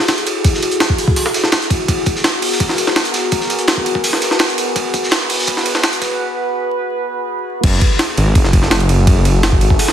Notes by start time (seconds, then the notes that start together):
Already playing: E4 F#4 G#4 A4
0.08 snare, ride, shaker
0.18 closed hi-hat, ride
0.27 ride, shaker
0.44 kick, ride, shaker
0.54 snare
0.62 ride, shaker
0.71 closed hi-hat
0.80 snare, ride, shaker
0.90 kick
0.98 ride, shaker
1.08 kick
1.16 open hi-hat, shaker
1.26 snare
1.34 snare, ride, shaker
1.44 snare
1.52 snare, ride, shaker
1.62 closed hi-hat
1.70 kick, ride, shaker
1.88 B3 A#4, kick, ride, shaker
2.06 kick, ride, shaker
2.16 snare
2.24 snare, ride, shaker
2.42 open hi-hat, ride
2.52 snare
2.60 kick, ride, shaker
2.69 snare
2.78 ride, shaker
2.87 snare
2.96 snare, ride, shaker
3.05 closed hi-hat, ride
3.14 snare, ride, shaker
3.32 kick, ride, shaker
3.41 snare
3.50 ride, shaker
3.58 closed hi-hat
3.68 snare, ride, shaker
3.77 kick
3.86 ride, shaker
3.95 kick
4.04 open hi-hat, shaker
4.13 snare
4.21 snare, ride, shaker
4.31 snare
4.39 snare, ride, shaker
4.49 closed hi-hat
4.58 ride, shaker
4.76 B4, kick, ride, shaker
4.94 kick, ride, shaker
5.03 snare
5.11 snare, ride, shaker
5.30 open hi-hat, ride
5.39 snare
5.47 kick, ride, shaker
5.57 snare
5.66 ride, shaker
5.75 snare
5.83 snare, ride, shaker
5.93 closed hi-hat, ride
6.01 kick, snare, ride, shaker
7.63 F#1 E4 F#4 G#4 A4, kick, crash, ride
7.81 kick, ride
7.99 snare, ride
8.18 G#1, ride
8.35 F#1, kick, ride
8.45 snare
8.53 kick, ride
8.63 snare
8.71 snare, ride
8.80 ride
8.89 ride
9.07 kick, ride
9.25 ride
9.43 snare, ride
9.52 kick
9.61 G#1, ride
9.70 kick
9.79 open hi-hat
9.88 snare